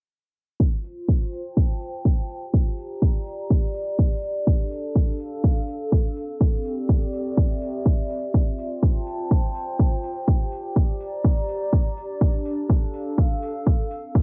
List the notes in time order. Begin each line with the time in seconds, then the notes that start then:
0.60 F4, kick
0.79 C5
0.84 open hi-hat
1.08 kick
1.13 G5
1.33 open hi-hat
1.37 A5
1.57 kick
1.81 open hi-hat
2.05 kick
2.29 G4, open hi-hat
2.54 kick
2.67 A#5
2.78 open hi-hat
2.82 D5
3.02 kick
3.26 open hi-hat
3.50 kick
3.75 open hi-hat
3.99 kick
4.23 D4, open hi-hat
4.35 A4
4.47 kick
4.71 open hi-hat
4.96 kick
5.11 F5
5.20 open hi-hat
5.44 kick
5.68 open hi-hat
5.92 kick
6.16 C4, open hi-hat
6.40 G4, kick
6.59 D5
6.65 open hi-hat
6.89 kick
7.13 E5, open hi-hat
7.37 kick
7.62 open hi-hat
7.86 kick
8.10 open hi-hat
8.34 F4, kick
8.52 C5
8.58 G5, open hi-hat
8.77 A5
8.83 kick
9.07 open hi-hat
9.31 kick
9.55 open hi-hat
9.79 kick
10.04 G4, open hi-hat
10.28 kick
10.51 D5, open hi-hat
10.76 kick
10.92 A#5
11.00 open hi-hat
11.25 kick
11.49 open hi-hat
11.73 kick
11.97 D4, open hi-hat
12.21 kick
12.46 open hi-hat
12.55 A4
12.70 kick
12.85 F5
12.94 open hi-hat
13.18 kick
13.42 open hi-hat
13.66 kick
13.91 C4, open hi-hat
14.15 kick